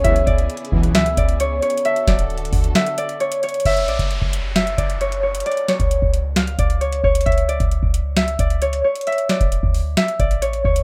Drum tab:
CC |------------------------------------------------------------------------------------------------|------------------------------------------------------------------------------------------------|x-----------------------------------------------------------------------------------------------|------------------------------------------------------------------------------------------------|
HH |x-----x-----x-----x-----x---x---x---------x-----x-----x-----x-----x-----x-----------x---x---x---|x-----x-----x-----x-----x---x---x---o-----x-----x-----x-----x-----x-----x-----x-----x--x--x--x--|x-----x-----x-----x-----x-----------x-----------x-----x-----x-----x-----x-----x-----------x--x--|x--x--x-----x-----x-----x-----------x-----------x-----x-----x-----x-----x-----x-----------x--x--|
SD |------------------------------------------------o-----------------------------------------------|------------o-----------------------------------o-----------------------------------------------|------------------------------------------------o-----------------------------------------------|------------o-----------------------------------o-----------------------------------------------|
BD |o-----------o-----------------------o-----------------------o-----------------------------------|------------o-----------------------o-----------------------------------------------------------|o-----------------o-----------o-----------------------------o-----------------------------------|------------------o-----------o-----------------------------o-----------------------o-----------|

CC |------------------------------------------------------------------------------------------------|------------------------------------------------------------------------------------------------|
HH |x--x--x-----x-----x-----x-----------x-----------x-----x-----x-----x-----x-----x-----------x--x--|x--x--x-----x-----x-----x-----------o-----------x-----x-----x-----x-----x-----x-----------x-----|
SD |------------------------------------------------o-----------------------------------------------|------------o-----------------------------------o-----------------------------------------------|
BD |o-----------------o-----------o-----------------------------o-----------------------------------|------------------o-----------o-----------------------------o-----------------------o-----------|